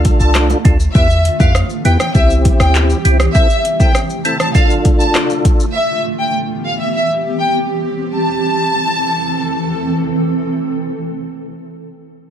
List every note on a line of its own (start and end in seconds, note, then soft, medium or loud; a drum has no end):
0.00 0.93 A3 medium
0.00 0.58 D4 medium
0.00 0.58 F4 medium
0.00 0.58 A4 loud
0.05 kick loud
0.05 closed hi-hat medium
0.05 shaker medium
0.20 0.54 C2 medium
0.20 0.32 A5 medium
0.20 shaker medium
0.35 cross-stick medium
0.35 clap medium
0.35 high bongo medium
0.35 shaker medium
0.50 high bongo medium
0.50 shaker medium
0.65 0.88 D2 medium
0.65 0.78 D4 medium
0.65 0.78 F4 medium
0.65 0.78 A4 medium
0.65 kick loud
0.65 closed hi-hat medium
0.65 low bongo medium
0.65 shaker medium
0.80 shaker medium
0.95 1.29 E2 loud
0.95 1.08 B3 loud
0.95 1.08 E4 medium
0.95 3.33 G4 medium
0.95 1.08 G4 loud
0.95 1.19 E5 loud
0.95 kick loud
0.95 shaker medium
1.10 shaker medium
1.25 closed hi-hat medium
1.25 shaker medium
1.40 1.63 F2 medium
1.40 1.53 B3 medium
1.40 1.53 E4 medium
1.40 1.53 G4 medium
1.40 1.52 F5 medium
1.40 kick loud
1.40 shaker medium
1.55 cross-stick loud
1.55 shaker medium
1.70 shaker soft
1.85 1.97 E2 medium
1.85 1.98 B3 medium
1.85 1.98 E4 medium
1.85 1.98 G4 medium
1.85 1.97 G5 medium
1.85 closed hi-hat medium
1.85 shaker soft
2.00 2.12 G5 medium
2.00 cross-stick loud
2.00 shaker medium
2.15 2.49 C2 loud
2.15 2.98 C4 medium
2.15 2.98 E4 medium
2.15 2.98 G4 loud
2.15 2.27 E5 medium
2.15 kick medium
2.15 shaker medium
2.30 shaker medium
2.45 kick loud
2.45 closed hi-hat medium
2.45 shaker medium
2.60 2.94 D2 loud
2.60 2.72 G5 medium
2.60 cross-stick loud
2.60 shaker medium
2.75 clap medium
2.75 shaker medium
2.90 shaker medium
3.05 3.28 C2 loud
3.05 3.18 C4 medium
3.05 3.18 E4 medium
3.05 3.18 G4 medium
3.05 closed hi-hat medium
3.05 shaker medium
3.20 cross-stick loud
3.20 shaker medium
3.35 3.48 C4 medium
3.35 3.48 E4 medium
3.35 3.48 A4 loud
3.35 3.59 E5 loud
3.35 kick loud
3.35 shaker medium
3.50 shaker medium
3.65 closed hi-hat medium
3.65 shaker medium
3.80 3.93 C4 medium
3.80 3.93 E4 medium
3.80 3.93 A4 medium
3.80 3.92 G5 medium
3.80 kick loud
3.80 shaker medium
3.95 cross-stick loud
3.95 shaker medium
4.10 shaker soft
4.25 4.38 C4 medium
4.25 4.38 E4 medium
4.25 4.38 A4 medium
4.25 4.37 A5 medium
4.25 closed hi-hat medium
4.25 shaker soft
4.40 4.52 A5 medium
4.40 cross-stick loud
4.40 shaker medium
4.55 5.65 D4 loud
4.55 5.65 F4 medium
4.55 5.66 A4 loud
4.55 4.67 F5 medium
4.55 kick loud
4.55 shaker medium
4.70 shaker medium
4.85 kick loud
4.85 closed hi-hat medium
4.85 shaker medium
5.00 5.12 A5 medium
5.00 shaker medium
5.15 cross-stick medium
5.15 clap medium
5.15 shaker medium
5.30 shaker medium
5.45 kick loud
5.45 closed hi-hat medium
5.45 shaker medium
5.60 shaker medium
5.75 8.13 G4 medium
5.75 5.99 E5 loud
6.20 6.32 G5 medium
6.65 6.77 F5 medium
6.80 6.92 E5 medium
6.95 7.07 E5 medium
7.40 7.52 G5 medium
8.15 11.31 E3 medium
8.15 11.31 C4 medium
8.15 11.31 A4 medium
8.15 9.91 A5 medium